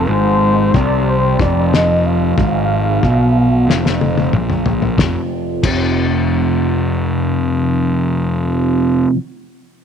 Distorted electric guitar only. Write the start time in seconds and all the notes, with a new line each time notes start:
0.08 G#2
0.74 C3
1.39 F2
2.37 G#2
3.03 B2
3.68 F2
4.33 A#2
4.97 F2 C3
5.01 F3
5.63 F2 C3
5.67 F3